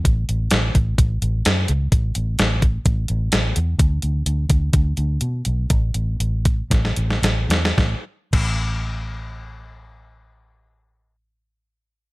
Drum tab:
CC |----------------|----------------|----------------|----------------|
HH |x-x-x-x-x-x-x-x-|x-x-x-x-x-x-x-x-|x-x-x-x-x-x-x-x-|x-x-x-x-x-x-x-x-|
SD |----o-------o---|----o-------o---|----------------|--------oo-oo-oo|
BD |o-----o-o-------|o-----o-o-------|o-----o-o-------|o-----o-o-------|

CC |----x-----------|----------------|
HH |----------------|----------------|
SD |o---------------|----------------|
BD |o---o-----------|----------------|